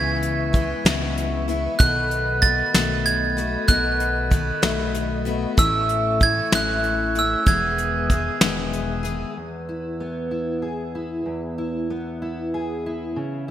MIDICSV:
0, 0, Header, 1, 7, 480
1, 0, Start_track
1, 0, Key_signature, 4, "major"
1, 0, Tempo, 631579
1, 1362, Time_signature, 6, 3, 24, 8
1, 10265, End_track
2, 0, Start_track
2, 0, Title_t, "Glockenspiel"
2, 0, Program_c, 0, 9
2, 0, Note_on_c, 0, 92, 74
2, 621, Note_off_c, 0, 92, 0
2, 1359, Note_on_c, 0, 90, 82
2, 1839, Note_on_c, 0, 93, 94
2, 1853, Note_off_c, 0, 90, 0
2, 2324, Note_on_c, 0, 92, 87
2, 2332, Note_off_c, 0, 93, 0
2, 2799, Note_on_c, 0, 90, 79
2, 2814, Note_off_c, 0, 92, 0
2, 3485, Note_off_c, 0, 90, 0
2, 4247, Note_on_c, 0, 88, 85
2, 4689, Note_off_c, 0, 88, 0
2, 4735, Note_on_c, 0, 92, 96
2, 4970, Note_off_c, 0, 92, 0
2, 4980, Note_on_c, 0, 90, 90
2, 5460, Note_off_c, 0, 90, 0
2, 5462, Note_on_c, 0, 88, 81
2, 5683, Note_on_c, 0, 92, 82
2, 5694, Note_off_c, 0, 88, 0
2, 6608, Note_off_c, 0, 92, 0
2, 10265, End_track
3, 0, Start_track
3, 0, Title_t, "Tonewheel organ"
3, 0, Program_c, 1, 16
3, 0, Note_on_c, 1, 71, 66
3, 0, Note_on_c, 1, 76, 53
3, 0, Note_on_c, 1, 85, 67
3, 1330, Note_off_c, 1, 76, 0
3, 1330, Note_off_c, 1, 85, 0
3, 1331, Note_off_c, 1, 71, 0
3, 1355, Note_on_c, 1, 69, 63
3, 1355, Note_on_c, 1, 83, 67
3, 1359, Note_on_c, 1, 75, 54
3, 4201, Note_off_c, 1, 83, 0
3, 4203, Note_off_c, 1, 75, 0
3, 4245, Note_on_c, 1, 85, 66
3, 4247, Note_on_c, 1, 76, 61
3, 5638, Note_off_c, 1, 69, 0
3, 5663, Note_off_c, 1, 85, 0
3, 5673, Note_on_c, 1, 87, 70
3, 5676, Note_on_c, 1, 68, 67
3, 7092, Note_off_c, 1, 76, 0
3, 7101, Note_off_c, 1, 87, 0
3, 7102, Note_off_c, 1, 68, 0
3, 10265, End_track
4, 0, Start_track
4, 0, Title_t, "Steel-string acoustic guitar"
4, 0, Program_c, 2, 25
4, 7121, Note_on_c, 2, 40, 46
4, 7362, Note_on_c, 2, 64, 38
4, 7603, Note_on_c, 2, 59, 40
4, 7833, Note_off_c, 2, 64, 0
4, 7836, Note_on_c, 2, 64, 37
4, 8073, Note_on_c, 2, 68, 36
4, 8319, Note_off_c, 2, 64, 0
4, 8322, Note_on_c, 2, 64, 37
4, 8546, Note_off_c, 2, 40, 0
4, 8555, Note_on_c, 2, 40, 45
4, 8799, Note_off_c, 2, 64, 0
4, 8802, Note_on_c, 2, 64, 41
4, 9044, Note_off_c, 2, 59, 0
4, 9047, Note_on_c, 2, 59, 39
4, 9283, Note_off_c, 2, 64, 0
4, 9286, Note_on_c, 2, 64, 40
4, 9527, Note_off_c, 2, 68, 0
4, 9530, Note_on_c, 2, 68, 39
4, 9772, Note_off_c, 2, 64, 0
4, 9775, Note_on_c, 2, 64, 39
4, 10003, Note_off_c, 2, 40, 0
4, 10004, Note_on_c, 2, 49, 47
4, 10026, Note_off_c, 2, 59, 0
4, 10243, Note_off_c, 2, 64, 0
4, 10265, Note_off_c, 2, 49, 0
4, 10265, Note_off_c, 2, 68, 0
4, 10265, End_track
5, 0, Start_track
5, 0, Title_t, "Steel-string acoustic guitar"
5, 0, Program_c, 3, 25
5, 0, Note_on_c, 3, 49, 75
5, 0, Note_on_c, 3, 52, 79
5, 0, Note_on_c, 3, 56, 76
5, 0, Note_on_c, 3, 59, 78
5, 0, Note_on_c, 3, 64, 74
5, 393, Note_off_c, 3, 52, 0
5, 402, Note_on_c, 3, 52, 59
5, 403, Note_off_c, 3, 56, 0
5, 404, Note_off_c, 3, 49, 0
5, 411, Note_off_c, 3, 64, 0
5, 412, Note_on_c, 3, 56, 58
5, 416, Note_off_c, 3, 59, 0
5, 419, Note_on_c, 3, 59, 59
5, 425, Note_on_c, 3, 64, 61
5, 637, Note_off_c, 3, 64, 0
5, 643, Note_off_c, 3, 52, 0
5, 645, Note_off_c, 3, 59, 0
5, 647, Note_on_c, 3, 64, 72
5, 648, Note_off_c, 3, 56, 0
5, 654, Note_on_c, 3, 59, 65
5, 656, Note_on_c, 3, 56, 57
5, 657, Note_on_c, 3, 52, 61
5, 663, Note_on_c, 3, 49, 58
5, 1114, Note_off_c, 3, 64, 0
5, 1124, Note_on_c, 3, 64, 53
5, 1128, Note_off_c, 3, 56, 0
5, 1129, Note_off_c, 3, 52, 0
5, 1129, Note_off_c, 3, 59, 0
5, 1132, Note_off_c, 3, 49, 0
5, 1132, Note_on_c, 3, 59, 51
5, 1145, Note_on_c, 3, 56, 47
5, 1362, Note_off_c, 3, 59, 0
5, 1362, Note_off_c, 3, 64, 0
5, 1363, Note_on_c, 3, 51, 68
5, 1364, Note_off_c, 3, 56, 0
5, 1364, Note_on_c, 3, 47, 73
5, 1367, Note_on_c, 3, 57, 76
5, 1371, Note_on_c, 3, 59, 78
5, 1376, Note_on_c, 3, 66, 83
5, 1829, Note_off_c, 3, 51, 0
5, 1838, Note_on_c, 3, 51, 55
5, 1841, Note_off_c, 3, 47, 0
5, 1841, Note_off_c, 3, 57, 0
5, 1844, Note_on_c, 3, 57, 57
5, 1845, Note_off_c, 3, 59, 0
5, 1847, Note_off_c, 3, 66, 0
5, 1853, Note_on_c, 3, 59, 63
5, 1858, Note_on_c, 3, 66, 62
5, 2076, Note_off_c, 3, 66, 0
5, 2078, Note_off_c, 3, 51, 0
5, 2080, Note_off_c, 3, 59, 0
5, 2081, Note_off_c, 3, 57, 0
5, 2085, Note_on_c, 3, 66, 56
5, 2089, Note_on_c, 3, 57, 56
5, 2089, Note_on_c, 3, 59, 57
5, 2094, Note_on_c, 3, 51, 54
5, 2099, Note_on_c, 3, 47, 49
5, 2551, Note_off_c, 3, 66, 0
5, 2560, Note_on_c, 3, 66, 53
5, 2562, Note_off_c, 3, 59, 0
5, 2565, Note_off_c, 3, 51, 0
5, 2568, Note_off_c, 3, 47, 0
5, 2570, Note_on_c, 3, 59, 45
5, 2578, Note_off_c, 3, 57, 0
5, 2581, Note_on_c, 3, 57, 44
5, 2794, Note_on_c, 3, 47, 75
5, 2796, Note_off_c, 3, 57, 0
5, 2797, Note_off_c, 3, 59, 0
5, 2798, Note_off_c, 3, 66, 0
5, 2799, Note_on_c, 3, 51, 72
5, 2805, Note_on_c, 3, 57, 73
5, 2806, Note_on_c, 3, 59, 77
5, 2809, Note_on_c, 3, 66, 80
5, 3263, Note_off_c, 3, 51, 0
5, 3272, Note_on_c, 3, 51, 53
5, 3274, Note_off_c, 3, 47, 0
5, 3278, Note_off_c, 3, 59, 0
5, 3279, Note_off_c, 3, 57, 0
5, 3281, Note_off_c, 3, 66, 0
5, 3282, Note_on_c, 3, 57, 61
5, 3288, Note_on_c, 3, 59, 56
5, 3294, Note_on_c, 3, 66, 64
5, 3504, Note_off_c, 3, 66, 0
5, 3508, Note_off_c, 3, 57, 0
5, 3510, Note_off_c, 3, 59, 0
5, 3513, Note_off_c, 3, 51, 0
5, 3513, Note_on_c, 3, 66, 76
5, 3517, Note_on_c, 3, 57, 68
5, 3519, Note_on_c, 3, 59, 70
5, 3524, Note_on_c, 3, 51, 59
5, 3528, Note_on_c, 3, 47, 60
5, 3982, Note_off_c, 3, 66, 0
5, 3991, Note_on_c, 3, 66, 61
5, 3995, Note_off_c, 3, 57, 0
5, 3996, Note_off_c, 3, 59, 0
5, 3998, Note_off_c, 3, 51, 0
5, 4000, Note_off_c, 3, 47, 0
5, 4005, Note_on_c, 3, 59, 54
5, 4012, Note_on_c, 3, 57, 45
5, 4232, Note_off_c, 3, 66, 0
5, 4233, Note_off_c, 3, 57, 0
5, 4235, Note_on_c, 3, 45, 71
5, 4237, Note_on_c, 3, 52, 68
5, 4239, Note_off_c, 3, 59, 0
5, 4242, Note_on_c, 3, 57, 77
5, 4247, Note_on_c, 3, 61, 79
5, 4249, Note_on_c, 3, 64, 76
5, 4711, Note_off_c, 3, 52, 0
5, 4711, Note_off_c, 3, 57, 0
5, 4713, Note_off_c, 3, 45, 0
5, 4714, Note_on_c, 3, 52, 59
5, 4717, Note_off_c, 3, 61, 0
5, 4720, Note_on_c, 3, 57, 59
5, 4726, Note_on_c, 3, 61, 61
5, 4730, Note_off_c, 3, 64, 0
5, 4733, Note_on_c, 3, 64, 57
5, 4946, Note_off_c, 3, 64, 0
5, 4949, Note_off_c, 3, 61, 0
5, 4953, Note_off_c, 3, 52, 0
5, 4953, Note_off_c, 3, 57, 0
5, 4955, Note_on_c, 3, 64, 63
5, 4959, Note_on_c, 3, 61, 65
5, 4962, Note_on_c, 3, 57, 58
5, 4967, Note_on_c, 3, 52, 58
5, 4970, Note_on_c, 3, 45, 53
5, 5435, Note_off_c, 3, 61, 0
5, 5437, Note_off_c, 3, 57, 0
5, 5438, Note_off_c, 3, 64, 0
5, 5441, Note_off_c, 3, 45, 0
5, 5441, Note_on_c, 3, 64, 50
5, 5454, Note_on_c, 3, 61, 47
5, 5462, Note_on_c, 3, 57, 40
5, 5677, Note_off_c, 3, 64, 0
5, 5680, Note_on_c, 3, 40, 72
5, 5680, Note_on_c, 3, 47, 70
5, 5681, Note_off_c, 3, 52, 0
5, 5683, Note_off_c, 3, 61, 0
5, 5684, Note_on_c, 3, 51, 73
5, 5687, Note_off_c, 3, 57, 0
5, 5690, Note_on_c, 3, 56, 82
5, 5690, Note_on_c, 3, 59, 83
5, 5694, Note_on_c, 3, 68, 77
5, 6149, Note_off_c, 3, 51, 0
5, 6156, Note_off_c, 3, 40, 0
5, 6156, Note_off_c, 3, 47, 0
5, 6158, Note_off_c, 3, 56, 0
5, 6158, Note_on_c, 3, 51, 49
5, 6161, Note_off_c, 3, 59, 0
5, 6163, Note_off_c, 3, 68, 0
5, 6167, Note_on_c, 3, 56, 54
5, 6171, Note_on_c, 3, 59, 60
5, 6177, Note_on_c, 3, 68, 59
5, 6390, Note_off_c, 3, 68, 0
5, 6395, Note_off_c, 3, 51, 0
5, 6395, Note_off_c, 3, 56, 0
5, 6396, Note_off_c, 3, 59, 0
5, 6399, Note_on_c, 3, 68, 63
5, 6404, Note_on_c, 3, 56, 62
5, 6405, Note_on_c, 3, 59, 64
5, 6411, Note_on_c, 3, 51, 59
5, 6413, Note_on_c, 3, 47, 64
5, 6417, Note_on_c, 3, 40, 54
5, 6854, Note_off_c, 3, 68, 0
5, 6863, Note_on_c, 3, 68, 51
5, 6865, Note_off_c, 3, 59, 0
5, 6870, Note_off_c, 3, 56, 0
5, 6874, Note_on_c, 3, 59, 49
5, 6877, Note_off_c, 3, 51, 0
5, 6879, Note_on_c, 3, 56, 50
5, 6884, Note_off_c, 3, 47, 0
5, 6886, Note_off_c, 3, 40, 0
5, 6886, Note_on_c, 3, 51, 44
5, 7109, Note_off_c, 3, 68, 0
5, 7114, Note_off_c, 3, 59, 0
5, 7117, Note_off_c, 3, 56, 0
5, 7121, Note_off_c, 3, 51, 0
5, 10265, End_track
6, 0, Start_track
6, 0, Title_t, "Analog synth bass"
6, 0, Program_c, 4, 38
6, 0, Note_on_c, 4, 37, 100
6, 565, Note_off_c, 4, 37, 0
6, 643, Note_on_c, 4, 37, 91
6, 1279, Note_off_c, 4, 37, 0
6, 1367, Note_on_c, 4, 35, 96
6, 2000, Note_off_c, 4, 35, 0
6, 2084, Note_on_c, 4, 35, 82
6, 2717, Note_off_c, 4, 35, 0
6, 2800, Note_on_c, 4, 35, 95
6, 3434, Note_off_c, 4, 35, 0
6, 3519, Note_on_c, 4, 35, 88
6, 4153, Note_off_c, 4, 35, 0
6, 4240, Note_on_c, 4, 33, 99
6, 4874, Note_off_c, 4, 33, 0
6, 4958, Note_on_c, 4, 33, 90
6, 5593, Note_off_c, 4, 33, 0
6, 5676, Note_on_c, 4, 28, 97
6, 6312, Note_off_c, 4, 28, 0
6, 6391, Note_on_c, 4, 28, 88
6, 7030, Note_off_c, 4, 28, 0
6, 10265, End_track
7, 0, Start_track
7, 0, Title_t, "Drums"
7, 172, Note_on_c, 9, 42, 55
7, 248, Note_off_c, 9, 42, 0
7, 410, Note_on_c, 9, 36, 75
7, 415, Note_on_c, 9, 42, 56
7, 486, Note_off_c, 9, 36, 0
7, 491, Note_off_c, 9, 42, 0
7, 653, Note_on_c, 9, 38, 105
7, 653, Note_on_c, 9, 42, 74
7, 729, Note_off_c, 9, 38, 0
7, 729, Note_off_c, 9, 42, 0
7, 893, Note_on_c, 9, 42, 56
7, 969, Note_off_c, 9, 42, 0
7, 1130, Note_on_c, 9, 42, 55
7, 1206, Note_off_c, 9, 42, 0
7, 1367, Note_on_c, 9, 36, 107
7, 1368, Note_on_c, 9, 42, 78
7, 1443, Note_off_c, 9, 36, 0
7, 1444, Note_off_c, 9, 42, 0
7, 1605, Note_on_c, 9, 42, 54
7, 1681, Note_off_c, 9, 42, 0
7, 1844, Note_on_c, 9, 36, 75
7, 1844, Note_on_c, 9, 42, 51
7, 1920, Note_off_c, 9, 36, 0
7, 1920, Note_off_c, 9, 42, 0
7, 2086, Note_on_c, 9, 38, 97
7, 2086, Note_on_c, 9, 42, 80
7, 2162, Note_off_c, 9, 38, 0
7, 2162, Note_off_c, 9, 42, 0
7, 2323, Note_on_c, 9, 42, 61
7, 2399, Note_off_c, 9, 42, 0
7, 2567, Note_on_c, 9, 42, 53
7, 2643, Note_off_c, 9, 42, 0
7, 2799, Note_on_c, 9, 42, 79
7, 2801, Note_on_c, 9, 36, 94
7, 2875, Note_off_c, 9, 42, 0
7, 2877, Note_off_c, 9, 36, 0
7, 3040, Note_on_c, 9, 42, 62
7, 3116, Note_off_c, 9, 42, 0
7, 3279, Note_on_c, 9, 36, 73
7, 3280, Note_on_c, 9, 42, 58
7, 3355, Note_off_c, 9, 36, 0
7, 3356, Note_off_c, 9, 42, 0
7, 3517, Note_on_c, 9, 38, 102
7, 3517, Note_on_c, 9, 42, 80
7, 3593, Note_off_c, 9, 38, 0
7, 3593, Note_off_c, 9, 42, 0
7, 3759, Note_on_c, 9, 42, 62
7, 3835, Note_off_c, 9, 42, 0
7, 3998, Note_on_c, 9, 42, 54
7, 4074, Note_off_c, 9, 42, 0
7, 4239, Note_on_c, 9, 36, 101
7, 4241, Note_on_c, 9, 42, 79
7, 4315, Note_off_c, 9, 36, 0
7, 4317, Note_off_c, 9, 42, 0
7, 4477, Note_on_c, 9, 42, 51
7, 4553, Note_off_c, 9, 42, 0
7, 4719, Note_on_c, 9, 36, 74
7, 4722, Note_on_c, 9, 42, 51
7, 4795, Note_off_c, 9, 36, 0
7, 4798, Note_off_c, 9, 42, 0
7, 4958, Note_on_c, 9, 38, 106
7, 4958, Note_on_c, 9, 42, 76
7, 5034, Note_off_c, 9, 38, 0
7, 5034, Note_off_c, 9, 42, 0
7, 5197, Note_on_c, 9, 42, 56
7, 5273, Note_off_c, 9, 42, 0
7, 5435, Note_on_c, 9, 42, 52
7, 5511, Note_off_c, 9, 42, 0
7, 5670, Note_on_c, 9, 42, 73
7, 5674, Note_on_c, 9, 36, 99
7, 5746, Note_off_c, 9, 42, 0
7, 5750, Note_off_c, 9, 36, 0
7, 5914, Note_on_c, 9, 42, 55
7, 5990, Note_off_c, 9, 42, 0
7, 6154, Note_on_c, 9, 36, 71
7, 6155, Note_on_c, 9, 42, 59
7, 6230, Note_off_c, 9, 36, 0
7, 6231, Note_off_c, 9, 42, 0
7, 6392, Note_on_c, 9, 38, 102
7, 6392, Note_on_c, 9, 42, 72
7, 6468, Note_off_c, 9, 38, 0
7, 6468, Note_off_c, 9, 42, 0
7, 6637, Note_on_c, 9, 42, 56
7, 6713, Note_off_c, 9, 42, 0
7, 6875, Note_on_c, 9, 42, 56
7, 6951, Note_off_c, 9, 42, 0
7, 10265, End_track
0, 0, End_of_file